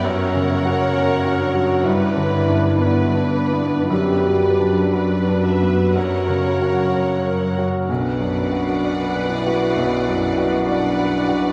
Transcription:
X:1
M:4/4
L:1/16
Q:1/4=64
K:Bm
V:1 name="Violin section"
f8 d4 d4 | d4 d2 e2 f8 | f12 f4 |]
V:2 name="Violin section"
c8 B4 B4 | B4 B4 c8 | d12 d4 |]
V:3 name="Viola section"
^A8 B4 B4 | B4 B4 ^A8 | B12 B4 |]
V:4 name="French horn section"
C6 D2 E4 B,3 D | G4 F8 z4 | D6 E6 D4 |]
V:5 name="Grand piano"
(3F,,2 C,2 F2 (3^A2 F2 F,2 (3G,,2 D,2 D2 (3B2 D2 B,2 | (3F,,2 F,2 D2 (3B2 D2 B,2 (3F,,2 C,2 F2 (3c2 ^A2 F2 | (3B,,,2 F,,2 F2 (3d2 B2 F2 (3B,,,2 F,,2 F2 (3d2 B2 F2 |]
V:6 name="Cello section" clef=bass
F,,8 G,,8 | F,,16 | B,,16 |]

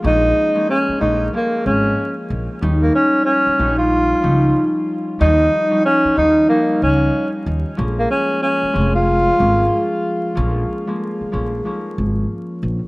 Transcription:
X:1
M:4/4
L:1/16
Q:"Swing 16ths" 1/4=93
K:Bbdor
V:1 name="Tenor saxophone"
E4 D2 E2 B,2 D3 z3 | z B, D2 D3 F6 z3 | E4 D2 E2 B,2 D3 z3 | z B, D2 D3 F6 z3 |
z16 |]
V:2 name="Harp"
[F,A,B,D]3 [F,A,B,D]3 [F,A,B,D]2 [F,A,B,D]6- [F,A,B,D] z | [F,G,DE]6 [F,G,DE]4 [F,G,DE]6 | [F,G,DE]3 [F,G,DE]3 [F,G,DE]2 [F,G,DE]6- [F,G,DE] z | [F,A,B,D]6 [F,A,B,D]4 [F,A,B,D]6 |
[F,A,B,D]3 [F,A,B,D]3 [F,A,B,D]2 [F,A,B,D]6- [F,A,B,D] z |]
V:3 name="Upright bass" clef=bass
B,,,2 z4 B,,,2 z2 A,,,2 z2 B,,, z | E,,2 z4 B,,,4 D,,2 z4 | E,,2 z4 E,,2 z2 D,,2 z2 E,, z | B,,,2 z4 F,,,4 A,,,2 z4 |
B,,,2 z4 B,,,2 z2 A,,,2 z2 B,,, z |]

